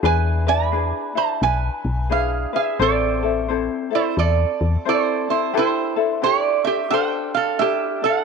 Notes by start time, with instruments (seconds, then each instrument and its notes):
0.03 fm bass E2, ukulele D4 E4 G#4 B4, resonator guitar played with a steel bar B4 G#5
0.47 ukulele D4 E4 B4, resonator guitar played with a steel bar D5 B5
0.72 ukulele D4 E4 G#4 B4
1.15 ukulele D4 E4, resonator guitar played with a steel bar C5 A5
1.42 fm bass B1, resonator guitar played with a steel bar B4 G#5
1.85 fm bass B1
2.09 ukulele D4 E4 G#4 B4, resonator guitar played with a steel bar G#4 F5
2.53 ukulele D4 E4 B4, resonator guitar played with a steel bar G#4 E5
2.79 fm bass A1, ukulele C4 E4 A4 C5, resonator guitar played with a steel bar A4 D5
3.23 ukulele C4 E4 A4
3.48 ukulele C4 E4 A4 C5
3.91 ukulele C4 E4 A4
3.95 resonator guitar played with a steel bar E4 C5
4.17 fm bass E2, resonator guitar played with a steel bar A4 D5
4.61 fm bass E2
4.85 ukulele C4 E4 A4 C5, resonator guitar played with a steel bar C5 D5
4.89 resonator guitar played with a steel bar E4 A4
5.29 ukulele C4 E4 A4, resonator guitar played with a steel bar E4 C5
5.54 ukulele D4 E4 G4 A4, resonator guitar played with a steel bar C5
5.59 resonator guitar played with a steel bar E4
5.96 ukulele D4 E4 A4
6.22 ukulele D4 E4 G4 A4, resonator guitar played with a steel bar C#5
6.26 resonator guitar played with a steel bar G4
6.41 resonator guitar played with a steel bar D5
6.64 ukulele D4 E4 A4, resonator guitar played with a steel bar G4 E5
6.90 ukulele D4 G4 A4, resonator guitar played with a steel bar C5 G5
7.34 resonator guitar played with a steel bar A4 F5
7.59 ukulele D4 E4 G4 A4, resonator guitar played with a steel bar G4 E5
8.02 ukulele D4 E4 A4, resonator guitar played with a steel bar A4 F#5